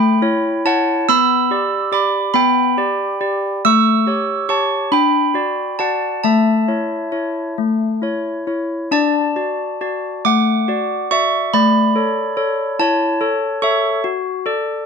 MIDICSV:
0, 0, Header, 1, 2, 480
1, 0, Start_track
1, 0, Key_signature, 2, "major"
1, 0, Tempo, 855920
1, 606, Time_signature, 6, 3, 24, 8
1, 2999, Tempo, 890208
1, 5879, Tempo, 839161
1, 8264, End_track
2, 0, Start_track
2, 0, Title_t, "Handbells"
2, 0, Program_c, 0, 14
2, 0, Note_on_c, 0, 57, 73
2, 0, Note_on_c, 0, 79, 66
2, 0, Note_on_c, 0, 83, 83
2, 115, Note_off_c, 0, 57, 0
2, 124, Note_on_c, 0, 64, 59
2, 125, Note_on_c, 0, 73, 60
2, 344, Note_off_c, 0, 64, 0
2, 344, Note_off_c, 0, 73, 0
2, 348, Note_off_c, 0, 79, 0
2, 349, Note_off_c, 0, 83, 0
2, 366, Note_on_c, 0, 64, 54
2, 368, Note_on_c, 0, 81, 100
2, 369, Note_on_c, 0, 73, 55
2, 374, Note_on_c, 0, 78, 71
2, 585, Note_off_c, 0, 64, 0
2, 586, Note_off_c, 0, 73, 0
2, 595, Note_off_c, 0, 78, 0
2, 599, Note_off_c, 0, 81, 0
2, 609, Note_on_c, 0, 88, 127
2, 610, Note_on_c, 0, 59, 69
2, 614, Note_on_c, 0, 83, 97
2, 836, Note_off_c, 0, 59, 0
2, 846, Note_on_c, 0, 67, 56
2, 850, Note_on_c, 0, 74, 56
2, 1053, Note_off_c, 0, 67, 0
2, 1055, Note_off_c, 0, 74, 0
2, 1055, Note_off_c, 0, 83, 0
2, 1056, Note_off_c, 0, 88, 0
2, 1076, Note_on_c, 0, 67, 53
2, 1080, Note_on_c, 0, 74, 58
2, 1080, Note_on_c, 0, 86, 90
2, 1087, Note_on_c, 0, 83, 66
2, 1286, Note_off_c, 0, 67, 0
2, 1288, Note_off_c, 0, 74, 0
2, 1298, Note_off_c, 0, 83, 0
2, 1301, Note_off_c, 0, 86, 0
2, 1311, Note_on_c, 0, 83, 100
2, 1312, Note_on_c, 0, 59, 74
2, 1321, Note_on_c, 0, 79, 76
2, 1542, Note_off_c, 0, 59, 0
2, 1557, Note_on_c, 0, 67, 51
2, 1559, Note_on_c, 0, 74, 56
2, 1773, Note_off_c, 0, 67, 0
2, 1775, Note_off_c, 0, 74, 0
2, 1799, Note_on_c, 0, 67, 52
2, 1800, Note_on_c, 0, 74, 55
2, 2013, Note_off_c, 0, 83, 0
2, 2016, Note_off_c, 0, 67, 0
2, 2016, Note_off_c, 0, 74, 0
2, 2018, Note_off_c, 0, 79, 0
2, 2046, Note_on_c, 0, 57, 70
2, 2046, Note_on_c, 0, 88, 127
2, 2054, Note_on_c, 0, 85, 90
2, 2273, Note_off_c, 0, 57, 0
2, 2281, Note_on_c, 0, 67, 46
2, 2285, Note_on_c, 0, 73, 53
2, 2494, Note_off_c, 0, 67, 0
2, 2496, Note_off_c, 0, 73, 0
2, 2500, Note_off_c, 0, 88, 0
2, 2501, Note_off_c, 0, 85, 0
2, 2517, Note_on_c, 0, 67, 46
2, 2518, Note_on_c, 0, 85, 81
2, 2521, Note_on_c, 0, 73, 49
2, 2524, Note_on_c, 0, 81, 69
2, 2733, Note_off_c, 0, 67, 0
2, 2735, Note_off_c, 0, 73, 0
2, 2742, Note_off_c, 0, 81, 0
2, 2747, Note_off_c, 0, 85, 0
2, 2757, Note_on_c, 0, 62, 64
2, 2758, Note_on_c, 0, 83, 94
2, 2766, Note_on_c, 0, 79, 65
2, 2991, Note_off_c, 0, 62, 0
2, 2996, Note_on_c, 0, 66, 44
2, 3002, Note_on_c, 0, 74, 49
2, 3213, Note_off_c, 0, 66, 0
2, 3215, Note_off_c, 0, 74, 0
2, 3218, Note_off_c, 0, 83, 0
2, 3219, Note_off_c, 0, 79, 0
2, 3237, Note_on_c, 0, 81, 70
2, 3240, Note_on_c, 0, 66, 40
2, 3241, Note_on_c, 0, 74, 49
2, 3245, Note_on_c, 0, 78, 53
2, 3457, Note_off_c, 0, 66, 0
2, 3458, Note_off_c, 0, 74, 0
2, 3465, Note_off_c, 0, 78, 0
2, 3468, Note_off_c, 0, 81, 0
2, 3478, Note_on_c, 0, 81, 74
2, 3480, Note_on_c, 0, 57, 61
2, 3485, Note_on_c, 0, 76, 60
2, 3713, Note_off_c, 0, 57, 0
2, 3718, Note_on_c, 0, 64, 39
2, 3719, Note_on_c, 0, 73, 43
2, 3937, Note_off_c, 0, 64, 0
2, 3938, Note_off_c, 0, 73, 0
2, 3955, Note_on_c, 0, 64, 36
2, 3955, Note_on_c, 0, 73, 41
2, 4176, Note_off_c, 0, 64, 0
2, 4176, Note_off_c, 0, 73, 0
2, 4203, Note_on_c, 0, 57, 45
2, 4435, Note_off_c, 0, 57, 0
2, 4440, Note_on_c, 0, 64, 38
2, 4445, Note_on_c, 0, 73, 44
2, 4660, Note_off_c, 0, 64, 0
2, 4661, Note_off_c, 0, 81, 0
2, 4663, Note_off_c, 0, 73, 0
2, 4665, Note_off_c, 0, 76, 0
2, 4683, Note_on_c, 0, 64, 40
2, 4685, Note_on_c, 0, 73, 40
2, 4900, Note_off_c, 0, 64, 0
2, 4900, Note_off_c, 0, 73, 0
2, 4922, Note_on_c, 0, 62, 63
2, 4925, Note_on_c, 0, 81, 98
2, 4931, Note_on_c, 0, 74, 71
2, 5153, Note_off_c, 0, 62, 0
2, 5158, Note_off_c, 0, 74, 0
2, 5163, Note_on_c, 0, 66, 43
2, 5164, Note_on_c, 0, 74, 50
2, 5383, Note_off_c, 0, 66, 0
2, 5383, Note_off_c, 0, 74, 0
2, 5405, Note_on_c, 0, 66, 46
2, 5407, Note_on_c, 0, 74, 48
2, 5622, Note_off_c, 0, 66, 0
2, 5623, Note_off_c, 0, 74, 0
2, 5623, Note_off_c, 0, 81, 0
2, 5642, Note_on_c, 0, 86, 107
2, 5643, Note_on_c, 0, 57, 50
2, 5648, Note_on_c, 0, 78, 79
2, 5869, Note_off_c, 0, 57, 0
2, 5876, Note_on_c, 0, 66, 47
2, 5880, Note_on_c, 0, 74, 48
2, 6096, Note_off_c, 0, 66, 0
2, 6098, Note_off_c, 0, 74, 0
2, 6098, Note_off_c, 0, 86, 0
2, 6099, Note_off_c, 0, 78, 0
2, 6119, Note_on_c, 0, 66, 44
2, 6120, Note_on_c, 0, 85, 98
2, 6122, Note_on_c, 0, 74, 54
2, 6126, Note_on_c, 0, 76, 73
2, 6338, Note_off_c, 0, 66, 0
2, 6340, Note_off_c, 0, 74, 0
2, 6348, Note_off_c, 0, 76, 0
2, 6352, Note_off_c, 0, 85, 0
2, 6363, Note_on_c, 0, 57, 62
2, 6363, Note_on_c, 0, 83, 99
2, 6367, Note_on_c, 0, 74, 77
2, 6596, Note_off_c, 0, 57, 0
2, 6603, Note_on_c, 0, 69, 48
2, 6605, Note_on_c, 0, 73, 47
2, 6822, Note_off_c, 0, 69, 0
2, 6822, Note_off_c, 0, 73, 0
2, 6840, Note_on_c, 0, 69, 51
2, 6841, Note_on_c, 0, 73, 55
2, 7060, Note_off_c, 0, 69, 0
2, 7060, Note_off_c, 0, 73, 0
2, 7063, Note_off_c, 0, 83, 0
2, 7065, Note_off_c, 0, 74, 0
2, 7083, Note_on_c, 0, 64, 60
2, 7084, Note_on_c, 0, 81, 100
2, 7090, Note_on_c, 0, 73, 74
2, 7315, Note_off_c, 0, 73, 0
2, 7316, Note_off_c, 0, 64, 0
2, 7319, Note_on_c, 0, 69, 53
2, 7322, Note_on_c, 0, 73, 55
2, 7535, Note_off_c, 0, 69, 0
2, 7537, Note_off_c, 0, 73, 0
2, 7541, Note_off_c, 0, 81, 0
2, 7556, Note_on_c, 0, 69, 53
2, 7556, Note_on_c, 0, 85, 86
2, 7559, Note_on_c, 0, 73, 52
2, 7564, Note_on_c, 0, 76, 73
2, 7772, Note_off_c, 0, 69, 0
2, 7773, Note_off_c, 0, 73, 0
2, 7782, Note_off_c, 0, 76, 0
2, 7785, Note_off_c, 0, 85, 0
2, 7796, Note_on_c, 0, 66, 74
2, 8027, Note_off_c, 0, 66, 0
2, 8034, Note_on_c, 0, 69, 50
2, 8038, Note_on_c, 0, 74, 56
2, 8251, Note_off_c, 0, 69, 0
2, 8253, Note_off_c, 0, 74, 0
2, 8264, End_track
0, 0, End_of_file